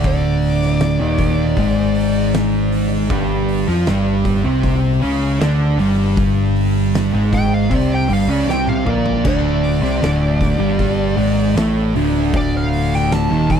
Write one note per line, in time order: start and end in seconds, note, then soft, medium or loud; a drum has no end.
0.00 0.97 D1 medium
0.00 0.99 D2 medium
0.00 1.00 D3 loud
0.00 open hi-hat medium
0.04 2.31 D5 medium
0.04 kick loud
0.42 open hi-hat medium
0.62 snare soft
0.80 snare loud
0.80 open hi-hat medium
1.00 1.53 D#1 loud
1.00 1.56 D#2 medium
1.00 1.57 D#3 loud
1.18 kick medium
1.18 open hi-hat medium
1.56 3.07 G#1 loud
1.56 3.09 G#2 medium
1.56 3.09 G#3 loud
1.56 kick medium
1.56 open hi-hat medium
1.95 open hi-hat medium
2.34 snare loud
2.34 open hi-hat medium
2.72 open hi-hat medium
3.10 3.64 G1 loud
3.10 3.67 G2 medium
3.10 3.67 G3 loud
3.10 kick loud
3.10 open hi-hat medium
3.49 open hi-hat medium
3.67 3.86 F2 loud
3.67 3.86 F3 medium
3.67 3.86 F4 loud
3.67 snare soft
3.86 4.41 G1 loud
3.86 4.43 G2 medium
3.86 4.44 G3 loud
3.86 snare loud
3.86 open hi-hat medium
4.25 kick medium
4.25 open hi-hat medium
4.45 4.99 C2 loud
4.45 5.01 C3 medium
4.45 5.02 C4 medium
4.63 kick medium
4.63 open hi-hat medium
5.02 5.39 C#2 loud
5.02 5.39 C#3 loud
5.02 5.40 C#4 loud
5.02 open hi-hat medium
5.40 5.76 D2 loud
5.40 5.78 D3 medium
5.40 5.79 D4 loud
5.40 snare loud
5.40 open hi-hat medium
5.78 7.09 G1 medium
5.78 7.12 G2 medium
5.78 7.13 G3 loud
5.78 open hi-hat medium
6.17 kick loud
6.17 open hi-hat medium
6.56 open hi-hat medium
6.94 snare loud
6.94 open hi-hat medium
7.14 7.67 G#1 loud
7.14 7.70 G#2 loud
7.14 7.71 G#3 loud
7.33 7.53 G5 loud
7.33 kick medium
7.33 snare soft
7.33 open hi-hat medium
7.54 7.72 F5 medium
7.71 8.07 C2 loud
7.71 8.09 C3 medium
7.71 8.09 C4 loud
7.71 kick medium
7.71 open hi-hat medium
7.75 7.92 D5 medium
7.94 8.11 G5 medium
8.09 8.27 G1 loud
8.09 8.28 G2 medium
8.09 8.28 G3 loud
8.09 open hi-hat medium
8.13 8.31 F5 medium
8.27 8.46 C#2 medium
8.27 8.47 C#3 medium
8.27 8.48 C#4 medium
8.27 8.49 D5 medium
8.46 8.83 C2 loud
8.46 8.85 C3 medium
8.46 8.86 C4 loud
8.46 snare medium
8.51 8.68 G5 medium
8.67 8.89 F5 medium
8.67 high tom medium
8.85 9.22 A#1 medium
8.85 9.24 A#2 medium
8.85 9.24 A#3 loud
8.85 mid tom medium
8.89 9.26 D5 medium
9.06 floor tom medium
9.25 9.79 D1 medium
9.25 9.82 D2 loud
9.25 9.83 D3 loud
9.25 11.54 D5 medium
9.25 kick loud
9.25 crash loud
9.64 open hi-hat medium
9.81 10.00 C2 loud
9.81 10.01 C3 medium
9.81 10.02 C4 loud
9.81 snare soft
10.01 10.56 D1 medium
10.01 10.58 D2 medium
10.01 10.59 D3 loud
10.01 snare loud
10.01 open hi-hat medium
10.41 kick medium
10.41 snare soft
10.41 open hi-hat medium
10.59 11.14 G1 loud
10.59 11.17 G2 medium
10.59 11.17 G3 medium
10.79 kick medium
10.79 open hi-hat medium
11.17 11.54 G#1 loud
11.17 11.55 G#2 loud
11.17 11.56 G#3 loud
11.17 open hi-hat medium
11.55 11.92 A1 loud
11.55 11.94 A2 medium
11.55 11.95 A3 loud
11.55 snare loud
11.55 open hi-hat medium
11.95 13.27 D1 medium
11.95 13.30 D2 loud
11.95 13.30 D3 loud
11.95 open hi-hat medium
12.34 12.57 D5 medium
12.34 kick loud
12.34 open hi-hat medium
12.57 12.93 F5 medium
12.73 open hi-hat medium
12.93 13.13 G5 medium
12.93 snare soft
13.11 13.51 A5 medium
13.11 snare loud
13.11 open hi-hat medium
13.30 13.60 D#1 loud
13.30 13.60 D#2 loud
13.30 13.60 D#3 loud
13.50 13.60 A5 loud
13.50 kick medium
13.50 open hi-hat medium